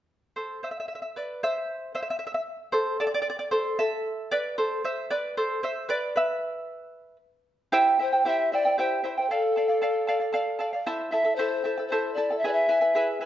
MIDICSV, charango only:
0, 0, Header, 1, 2, 480
1, 0, Start_track
1, 0, Key_signature, 0, "minor"
1, 0, Tempo, 524476
1, 1292, Time_signature, 6, 3, 24, 8
1, 12132, End_track
2, 0, Start_track
2, 0, Title_t, "Charango"
2, 0, Program_c, 0, 24
2, 330, Note_on_c, 0, 72, 64
2, 334, Note_on_c, 0, 69, 54
2, 555, Note_off_c, 0, 69, 0
2, 568, Note_off_c, 0, 72, 0
2, 577, Note_on_c, 0, 72, 60
2, 584, Note_on_c, 0, 76, 62
2, 640, Note_off_c, 0, 72, 0
2, 640, Note_off_c, 0, 76, 0
2, 651, Note_on_c, 0, 76, 55
2, 719, Note_off_c, 0, 76, 0
2, 731, Note_on_c, 0, 76, 65
2, 794, Note_off_c, 0, 76, 0
2, 806, Note_on_c, 0, 76, 59
2, 860, Note_off_c, 0, 76, 0
2, 871, Note_on_c, 0, 76, 61
2, 922, Note_off_c, 0, 76, 0
2, 933, Note_on_c, 0, 76, 51
2, 1003, Note_off_c, 0, 76, 0
2, 1064, Note_on_c, 0, 71, 50
2, 1071, Note_on_c, 0, 74, 58
2, 1283, Note_off_c, 0, 71, 0
2, 1307, Note_off_c, 0, 74, 0
2, 1311, Note_on_c, 0, 72, 60
2, 1316, Note_on_c, 0, 76, 69
2, 1752, Note_off_c, 0, 72, 0
2, 1776, Note_off_c, 0, 76, 0
2, 1781, Note_on_c, 0, 72, 49
2, 1787, Note_on_c, 0, 76, 63
2, 1843, Note_off_c, 0, 76, 0
2, 1845, Note_off_c, 0, 72, 0
2, 1854, Note_on_c, 0, 76, 50
2, 1914, Note_off_c, 0, 76, 0
2, 1925, Note_on_c, 0, 76, 53
2, 1988, Note_off_c, 0, 76, 0
2, 2004, Note_on_c, 0, 76, 51
2, 2063, Note_off_c, 0, 76, 0
2, 2075, Note_on_c, 0, 76, 56
2, 2135, Note_off_c, 0, 76, 0
2, 2144, Note_on_c, 0, 76, 48
2, 2205, Note_off_c, 0, 76, 0
2, 2492, Note_on_c, 0, 72, 68
2, 2501, Note_on_c, 0, 69, 50
2, 2724, Note_off_c, 0, 69, 0
2, 2742, Note_off_c, 0, 72, 0
2, 2745, Note_on_c, 0, 74, 64
2, 2751, Note_on_c, 0, 69, 55
2, 2797, Note_off_c, 0, 74, 0
2, 2808, Note_on_c, 0, 74, 51
2, 2812, Note_off_c, 0, 69, 0
2, 2867, Note_off_c, 0, 74, 0
2, 2878, Note_on_c, 0, 74, 61
2, 2934, Note_off_c, 0, 74, 0
2, 2945, Note_on_c, 0, 74, 57
2, 3007, Note_off_c, 0, 74, 0
2, 3018, Note_on_c, 0, 74, 59
2, 3092, Note_off_c, 0, 74, 0
2, 3103, Note_on_c, 0, 74, 52
2, 3173, Note_off_c, 0, 74, 0
2, 3215, Note_on_c, 0, 72, 67
2, 3221, Note_on_c, 0, 69, 50
2, 3445, Note_off_c, 0, 69, 0
2, 3466, Note_off_c, 0, 72, 0
2, 3467, Note_on_c, 0, 76, 81
2, 3473, Note_on_c, 0, 69, 61
2, 3915, Note_off_c, 0, 69, 0
2, 3949, Note_on_c, 0, 74, 76
2, 3956, Note_on_c, 0, 71, 54
2, 3960, Note_off_c, 0, 76, 0
2, 4174, Note_off_c, 0, 71, 0
2, 4187, Note_off_c, 0, 74, 0
2, 4191, Note_on_c, 0, 72, 65
2, 4196, Note_on_c, 0, 69, 50
2, 4411, Note_off_c, 0, 72, 0
2, 4412, Note_off_c, 0, 69, 0
2, 4434, Note_on_c, 0, 72, 60
2, 4439, Note_on_c, 0, 76, 69
2, 4654, Note_off_c, 0, 72, 0
2, 4673, Note_on_c, 0, 74, 73
2, 4677, Note_off_c, 0, 76, 0
2, 4677, Note_on_c, 0, 71, 60
2, 4895, Note_off_c, 0, 71, 0
2, 4915, Note_off_c, 0, 74, 0
2, 4919, Note_on_c, 0, 72, 64
2, 4922, Note_on_c, 0, 69, 49
2, 5135, Note_off_c, 0, 69, 0
2, 5136, Note_off_c, 0, 72, 0
2, 5153, Note_on_c, 0, 72, 56
2, 5162, Note_on_c, 0, 76, 64
2, 5373, Note_off_c, 0, 72, 0
2, 5377, Note_off_c, 0, 76, 0
2, 5389, Note_on_c, 0, 71, 56
2, 5398, Note_on_c, 0, 74, 75
2, 5610, Note_off_c, 0, 71, 0
2, 5635, Note_on_c, 0, 71, 54
2, 5639, Note_off_c, 0, 74, 0
2, 5648, Note_on_c, 0, 76, 68
2, 6553, Note_off_c, 0, 71, 0
2, 6559, Note_off_c, 0, 76, 0
2, 7068, Note_on_c, 0, 67, 75
2, 7070, Note_on_c, 0, 76, 75
2, 7072, Note_on_c, 0, 72, 81
2, 7073, Note_on_c, 0, 64, 84
2, 7075, Note_on_c, 0, 79, 80
2, 7303, Note_off_c, 0, 76, 0
2, 7305, Note_off_c, 0, 67, 0
2, 7307, Note_off_c, 0, 72, 0
2, 7308, Note_off_c, 0, 64, 0
2, 7309, Note_off_c, 0, 79, 0
2, 7314, Note_on_c, 0, 76, 52
2, 7322, Note_on_c, 0, 64, 54
2, 7322, Note_on_c, 0, 72, 55
2, 7334, Note_on_c, 0, 79, 54
2, 7425, Note_off_c, 0, 79, 0
2, 7428, Note_off_c, 0, 76, 0
2, 7432, Note_off_c, 0, 64, 0
2, 7432, Note_off_c, 0, 72, 0
2, 7436, Note_on_c, 0, 79, 52
2, 7444, Note_on_c, 0, 72, 44
2, 7452, Note_on_c, 0, 64, 41
2, 7547, Note_off_c, 0, 64, 0
2, 7549, Note_off_c, 0, 79, 0
2, 7550, Note_off_c, 0, 72, 0
2, 7552, Note_on_c, 0, 67, 65
2, 7557, Note_on_c, 0, 76, 68
2, 7558, Note_on_c, 0, 64, 73
2, 7561, Note_on_c, 0, 72, 70
2, 7562, Note_on_c, 0, 79, 65
2, 7787, Note_off_c, 0, 67, 0
2, 7787, Note_off_c, 0, 76, 0
2, 7789, Note_off_c, 0, 64, 0
2, 7791, Note_off_c, 0, 72, 0
2, 7792, Note_off_c, 0, 79, 0
2, 7798, Note_on_c, 0, 76, 54
2, 7810, Note_on_c, 0, 64, 50
2, 7811, Note_on_c, 0, 72, 57
2, 7820, Note_on_c, 0, 79, 56
2, 7905, Note_off_c, 0, 79, 0
2, 7910, Note_off_c, 0, 76, 0
2, 7912, Note_off_c, 0, 72, 0
2, 7915, Note_off_c, 0, 64, 0
2, 7916, Note_on_c, 0, 79, 51
2, 7923, Note_on_c, 0, 72, 46
2, 7933, Note_on_c, 0, 64, 39
2, 8028, Note_off_c, 0, 79, 0
2, 8032, Note_off_c, 0, 64, 0
2, 8032, Note_off_c, 0, 72, 0
2, 8035, Note_on_c, 0, 67, 60
2, 8042, Note_on_c, 0, 76, 66
2, 8043, Note_on_c, 0, 64, 68
2, 8045, Note_on_c, 0, 72, 66
2, 8052, Note_on_c, 0, 79, 66
2, 8259, Note_off_c, 0, 76, 0
2, 8264, Note_off_c, 0, 64, 0
2, 8267, Note_off_c, 0, 67, 0
2, 8270, Note_on_c, 0, 76, 48
2, 8272, Note_off_c, 0, 72, 0
2, 8275, Note_on_c, 0, 64, 58
2, 8276, Note_off_c, 0, 79, 0
2, 8282, Note_on_c, 0, 72, 57
2, 8286, Note_on_c, 0, 79, 60
2, 8385, Note_off_c, 0, 76, 0
2, 8386, Note_off_c, 0, 79, 0
2, 8387, Note_off_c, 0, 64, 0
2, 8391, Note_off_c, 0, 72, 0
2, 8397, Note_on_c, 0, 79, 44
2, 8411, Note_on_c, 0, 64, 39
2, 8411, Note_on_c, 0, 72, 40
2, 8508, Note_off_c, 0, 79, 0
2, 8514, Note_off_c, 0, 64, 0
2, 8515, Note_off_c, 0, 72, 0
2, 8518, Note_on_c, 0, 69, 64
2, 8520, Note_on_c, 0, 74, 67
2, 8522, Note_on_c, 0, 77, 69
2, 8737, Note_off_c, 0, 69, 0
2, 8748, Note_on_c, 0, 69, 50
2, 8749, Note_off_c, 0, 74, 0
2, 8750, Note_off_c, 0, 77, 0
2, 8760, Note_on_c, 0, 74, 56
2, 8764, Note_on_c, 0, 77, 54
2, 8848, Note_off_c, 0, 77, 0
2, 8859, Note_on_c, 0, 77, 46
2, 8861, Note_off_c, 0, 74, 0
2, 8863, Note_off_c, 0, 69, 0
2, 8872, Note_on_c, 0, 74, 40
2, 8977, Note_off_c, 0, 74, 0
2, 8978, Note_off_c, 0, 77, 0
2, 8983, Note_on_c, 0, 69, 65
2, 8988, Note_on_c, 0, 74, 68
2, 8993, Note_on_c, 0, 77, 68
2, 9207, Note_off_c, 0, 69, 0
2, 9218, Note_off_c, 0, 77, 0
2, 9218, Note_on_c, 0, 69, 57
2, 9220, Note_off_c, 0, 74, 0
2, 9229, Note_on_c, 0, 77, 72
2, 9231, Note_on_c, 0, 74, 63
2, 9323, Note_off_c, 0, 77, 0
2, 9334, Note_on_c, 0, 77, 52
2, 9336, Note_off_c, 0, 74, 0
2, 9337, Note_off_c, 0, 69, 0
2, 9347, Note_on_c, 0, 74, 43
2, 9450, Note_off_c, 0, 74, 0
2, 9450, Note_off_c, 0, 77, 0
2, 9450, Note_on_c, 0, 69, 69
2, 9461, Note_on_c, 0, 74, 71
2, 9461, Note_on_c, 0, 77, 85
2, 9680, Note_off_c, 0, 69, 0
2, 9690, Note_off_c, 0, 74, 0
2, 9691, Note_on_c, 0, 69, 60
2, 9693, Note_off_c, 0, 77, 0
2, 9701, Note_on_c, 0, 74, 58
2, 9704, Note_on_c, 0, 77, 62
2, 9808, Note_off_c, 0, 77, 0
2, 9812, Note_off_c, 0, 69, 0
2, 9817, Note_off_c, 0, 74, 0
2, 9819, Note_on_c, 0, 77, 51
2, 9831, Note_on_c, 0, 74, 45
2, 9936, Note_off_c, 0, 77, 0
2, 9942, Note_off_c, 0, 74, 0
2, 9943, Note_on_c, 0, 64, 75
2, 9943, Note_on_c, 0, 72, 72
2, 9946, Note_on_c, 0, 76, 68
2, 9947, Note_on_c, 0, 69, 80
2, 9948, Note_on_c, 0, 81, 79
2, 10167, Note_off_c, 0, 64, 0
2, 10167, Note_off_c, 0, 76, 0
2, 10177, Note_off_c, 0, 69, 0
2, 10177, Note_off_c, 0, 72, 0
2, 10178, Note_on_c, 0, 64, 48
2, 10178, Note_on_c, 0, 76, 49
2, 10179, Note_off_c, 0, 81, 0
2, 10188, Note_on_c, 0, 69, 60
2, 10192, Note_on_c, 0, 81, 56
2, 10280, Note_off_c, 0, 69, 0
2, 10280, Note_off_c, 0, 81, 0
2, 10291, Note_off_c, 0, 64, 0
2, 10291, Note_on_c, 0, 69, 43
2, 10291, Note_on_c, 0, 81, 49
2, 10295, Note_off_c, 0, 76, 0
2, 10302, Note_on_c, 0, 64, 43
2, 10410, Note_off_c, 0, 81, 0
2, 10411, Note_off_c, 0, 69, 0
2, 10416, Note_off_c, 0, 64, 0
2, 10421, Note_on_c, 0, 72, 63
2, 10423, Note_on_c, 0, 76, 67
2, 10426, Note_on_c, 0, 69, 69
2, 10428, Note_on_c, 0, 81, 81
2, 10429, Note_on_c, 0, 64, 73
2, 10641, Note_off_c, 0, 76, 0
2, 10650, Note_off_c, 0, 69, 0
2, 10651, Note_off_c, 0, 64, 0
2, 10652, Note_on_c, 0, 76, 50
2, 10655, Note_off_c, 0, 72, 0
2, 10655, Note_off_c, 0, 81, 0
2, 10661, Note_on_c, 0, 69, 55
2, 10662, Note_on_c, 0, 64, 51
2, 10666, Note_on_c, 0, 81, 60
2, 10766, Note_off_c, 0, 81, 0
2, 10770, Note_off_c, 0, 76, 0
2, 10775, Note_off_c, 0, 64, 0
2, 10775, Note_off_c, 0, 69, 0
2, 10777, Note_on_c, 0, 81, 47
2, 10790, Note_on_c, 0, 69, 44
2, 10792, Note_on_c, 0, 64, 38
2, 10892, Note_off_c, 0, 81, 0
2, 10899, Note_off_c, 0, 69, 0
2, 10900, Note_off_c, 0, 64, 0
2, 10907, Note_on_c, 0, 72, 62
2, 10908, Note_on_c, 0, 76, 62
2, 10909, Note_on_c, 0, 81, 71
2, 10911, Note_on_c, 0, 64, 65
2, 10916, Note_on_c, 0, 69, 75
2, 11126, Note_off_c, 0, 76, 0
2, 11131, Note_off_c, 0, 64, 0
2, 11132, Note_off_c, 0, 69, 0
2, 11136, Note_off_c, 0, 72, 0
2, 11137, Note_off_c, 0, 81, 0
2, 11137, Note_on_c, 0, 76, 52
2, 11142, Note_on_c, 0, 64, 57
2, 11143, Note_on_c, 0, 69, 58
2, 11147, Note_on_c, 0, 81, 65
2, 11250, Note_off_c, 0, 81, 0
2, 11252, Note_off_c, 0, 76, 0
2, 11254, Note_off_c, 0, 64, 0
2, 11254, Note_off_c, 0, 69, 0
2, 11261, Note_on_c, 0, 81, 43
2, 11269, Note_on_c, 0, 69, 41
2, 11273, Note_on_c, 0, 64, 39
2, 11373, Note_off_c, 0, 81, 0
2, 11377, Note_off_c, 0, 69, 0
2, 11379, Note_off_c, 0, 64, 0
2, 11386, Note_on_c, 0, 68, 64
2, 11387, Note_on_c, 0, 76, 66
2, 11389, Note_on_c, 0, 64, 69
2, 11391, Note_on_c, 0, 80, 71
2, 11396, Note_on_c, 0, 71, 66
2, 11599, Note_off_c, 0, 71, 0
2, 11599, Note_off_c, 0, 76, 0
2, 11600, Note_off_c, 0, 64, 0
2, 11609, Note_off_c, 0, 80, 0
2, 11610, Note_on_c, 0, 64, 52
2, 11610, Note_on_c, 0, 71, 58
2, 11610, Note_on_c, 0, 76, 50
2, 11615, Note_off_c, 0, 68, 0
2, 11620, Note_on_c, 0, 80, 63
2, 11712, Note_off_c, 0, 80, 0
2, 11713, Note_off_c, 0, 71, 0
2, 11722, Note_off_c, 0, 64, 0
2, 11723, Note_on_c, 0, 80, 44
2, 11724, Note_on_c, 0, 71, 43
2, 11727, Note_off_c, 0, 76, 0
2, 11733, Note_on_c, 0, 64, 42
2, 11843, Note_off_c, 0, 71, 0
2, 11843, Note_off_c, 0, 80, 0
2, 11848, Note_off_c, 0, 64, 0
2, 11851, Note_on_c, 0, 68, 66
2, 11856, Note_on_c, 0, 76, 64
2, 11860, Note_on_c, 0, 64, 66
2, 11860, Note_on_c, 0, 80, 69
2, 11863, Note_on_c, 0, 71, 66
2, 12076, Note_off_c, 0, 76, 0
2, 12077, Note_off_c, 0, 64, 0
2, 12083, Note_off_c, 0, 71, 0
2, 12086, Note_off_c, 0, 68, 0
2, 12086, Note_off_c, 0, 80, 0
2, 12087, Note_on_c, 0, 76, 49
2, 12088, Note_on_c, 0, 64, 49
2, 12094, Note_on_c, 0, 71, 53
2, 12097, Note_on_c, 0, 80, 54
2, 12132, Note_off_c, 0, 64, 0
2, 12132, Note_off_c, 0, 71, 0
2, 12132, Note_off_c, 0, 76, 0
2, 12132, Note_off_c, 0, 80, 0
2, 12132, End_track
0, 0, End_of_file